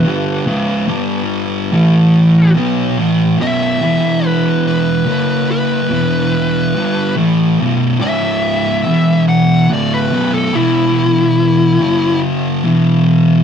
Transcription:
<<
  \new Staff \with { instrumentName = "Lead electric guitar" } { \time 4/4 \key b \minor \tempo 4 = 71 b'2. r4 | e''4 b'8 b'4 b'4.~ | b'8 r4 e''4. fis''8 d''16 b'16~ | b'16 a'16 e'2 r4. | }
  \new Staff \with { instrumentName = "Distorted electric guitar" } { \clef bass \time 4/4 \key b \minor <g, d g>8 <cis, gis, cis>8 <g, d g>4 <a, e a>4 <b, fis b>8 <a, e a>8 | <b,, fis, b,>8 <e, b, e>4. <fis, cis fis>4 <e, b, e>4 | <g, d g>8 <a, e a>8 <b,, fis, b,>8 <cis, gis, cis>4 <e, b, e>4 <d, a, d>8 | <b,, fis, b,>8 <e, b, e>4. <fis, cis fis>4 <e, b, e>4 | }
>>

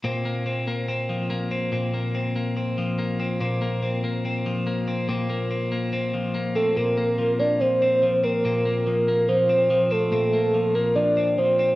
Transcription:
<<
  \new Staff \with { instrumentName = "Soft synth lead" } { \time 4/4 \key c \dorian \tempo 4 = 143 r1 | r1 | r1 | r2. r8 a'8 |
bes'4. d''8 c''4. bes'8~ | bes'4 bes'4 c''4. a'8~ | a'4. bes'8 d''4 c''4 | }
  \new Staff \with { instrumentName = "Clean electric guitar" } { \time 4/4 \key c \dorian <bes, c'>8 bes8 c'8 bes8 c'8 f8 bes8 c'8 | <bes, c'>8 bes8 c'8 bes8 c'8 f8 bes8 c'8 | <bes, c'>8 bes8 c'8 bes8 c'8 f8 bes8 c'8 | <bes, c'>8 bes8 c'8 bes8 c'8 f8 bes8 c'8 |
<bes, c'>8 bes8 f8 bes8 f8 c'8 f8 c'8 | <bes, c'>8 bes8 f8 bes8 f8 c'8 f8 c'8 | <bes, c'>8 bes8 f8 bes8 f8 c'8 f8 c'8 | }
>>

